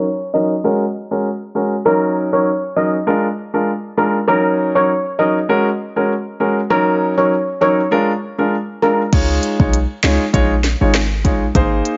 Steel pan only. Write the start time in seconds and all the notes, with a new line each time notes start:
0.34 D#5
1.86 A#4
2.33 C#5
2.77 D#5
3.98 A#4
4.28 A#4
4.75 C#5
5.19 D#5
6.70 A#4
7.18 C#5
7.62 C#5
8.82 A#4